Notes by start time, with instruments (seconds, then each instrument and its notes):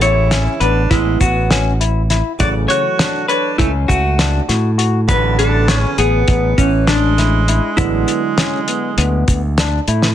Already playing: fingered electric bass A1, grand piano E3 G#3 B3 E4, tine electric piano B3
0.01 alto saxophone E4, hollow-body jazz guitar C#5, closed hi-hat
0.31 tine electric piano C#4, snare, closed hi-hat, shaker
0.60 fingered electric bass A1, tine electric piano B3, alto saxophone D4, hollow-body jazz guitar B4, closed hi-hat
0.91 fingered electric bass A1, alto saxophone G#3, tine electric piano B3, hollow-body jazz guitar E4, kick, snare, closed hi-hat
1.20 fingered electric bass A1, alto saxophone B3, hollow-body jazz guitar F#4, kick, closed hi-hat, shaker
1.51 tine electric piano C#4, snare, closed hi-hat
1.80 tine electric piano E4, closed hi-hat
2.10 tine electric piano E4, snare, closed hi-hat
2.39 fingered electric bass A1, tine electric piano C#3, grand piano E3 F#3 A3, alto saxophone F#4, hollow-body jazz guitar D5, kick, closed hi-hat, shaker
2.68 alto saxophone F#4, hollow-body jazz guitar C#5, closed hi-hat
2.99 tine electric piano D4, snare, closed hi-hat, shaker
3.28 alto saxophone D4, hollow-body jazz guitar B4, tine electric piano C#5, closed hi-hat
3.58 fingered electric bass C#2, alto saxophone A3, tine electric piano C#4, hollow-body jazz guitar E4, kick, closed hi-hat
3.88 fingered electric bass C#2, alto saxophone A3, hollow-body jazz guitar F#4, kick, closed hi-hat, shaker
4.19 tine electric piano D4, snare, closed hi-hat
4.49 fingered electric bass A2, tine electric piano F#4, snare, closed hi-hat
4.78 tine electric piano F#4, closed hi-hat
5.08 fingered electric bass A1, grand piano D3 E3 F#3 B3, tine electric piano B3, alto saxophone D4, hollow-body jazz guitar B4, kick, closed hi-hat, shaker
5.39 alto saxophone D4, hollow-body jazz guitar A4, closed hi-hat
5.68 tine electric piano C#5, snare, closed hi-hat, shaker
5.79 alto saxophone C#4, hollow-body jazz guitar G#4
5.98 fingered electric bass A1, tine electric piano B3, alto saxophone B3, hollow-body jazz guitar G#4, closed hi-hat
6.28 fingered electric bass A1, tine electric piano B3, kick, closed hi-hat
6.58 fingered electric bass A1, alto saxophone E3, hollow-body jazz guitar C#4, kick, closed hi-hat, shaker
6.87 alto saxophone G#3, hollow-body jazz guitar D4, tine electric piano D4, snare, closed hi-hat
7.18 tine electric piano E4, snare, closed hi-hat
7.48 tine electric piano E4, closed hi-hat
7.76 fingered electric bass A1, grand piano D3 F#3 G#3 D4, alto saxophone G#3, tine electric piano B3, hollow-body jazz guitar E4, kick, closed hi-hat, shaker
8.08 closed hi-hat, shaker
8.38 tine electric piano C#4, snare, closed hi-hat
8.68 tine electric piano B3, closed hi-hat
8.98 fingered electric bass D2, tine electric piano B3, closed hi-hat, shaker
9.28 fingered electric bass D2, kick, closed hi-hat, shaker
9.58 tine electric piano D4, snare, closed hi-hat, shaker
9.88 fingered electric bass A2, tine electric piano E4, closed hi-hat, shaker
10.02 snare